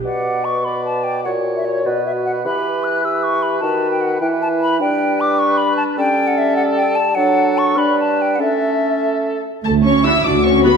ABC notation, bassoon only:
X:1
M:6/8
L:1/8
Q:3/8=101
K:Bm
V:1 name="Bassoon" clef=bass
B,,6 | ^A,,3 B,,3 | E,6 | ^D,3 E,3 |
[K:D] G,6 | G,6 | F,3 G,3 | A,4- A, z |
z6 |]